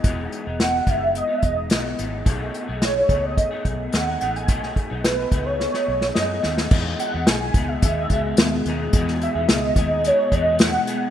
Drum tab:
CC |----------------|----------------|----------------|x---------------|
HH |x-x-x-x-x-x-x-x-|x-x-x-x-x-x-x-xx|x-x-x-x---------|--x-x-x-x-x-x-x-|
SD |----o-------o---|----o-------o---|-o--o---oo-oo-oo|----o-------o---|
BD |o-----o---o-----|o-----o-o-o-----|o-o---o---------|o-----o-o-o-----|

CC |----------------|
HH |x-x-x-x-x-x-xxx-|
SD |-o--o-------o---|
BD |o-----o---o-----|